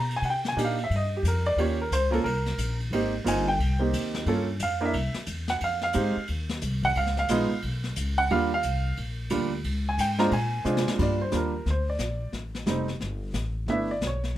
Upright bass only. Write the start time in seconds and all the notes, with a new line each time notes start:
Already playing: B2
0.22 C3
0.57 A#2
0.90 G2
1.23 F2
1.56 D#2
1.91 C#2
2.24 C2
2.58 A#1
2.91 G#1
3.25 G1
3.59 C2
3.93 D#2
4.26 G2
4.60 F2
4.93 C2
5.15 muted upright bass stroke
5.27 E2
5.61 F2
5.95 G#2
6.17 muted upright bass stroke
6.29 D#2
6.62 C2
6.96 C#2
7.29 A#1
7.51 muted upright bass stroke
7.63 B1
7.97 C#2
8.30 D#2
8.64 C2
8.98 A#1
9.31 D2
9.64 C#2
9.98 G#2
10.32 A#2
10.65 C3
10.86 muted upright bass stroke
10.99 G2
11.33 D#2
11.66 D2
11.98 A#1
12.32 A1
12.66 F1
13.00 G1
13.33 A1
13.67 G1
14.01 B1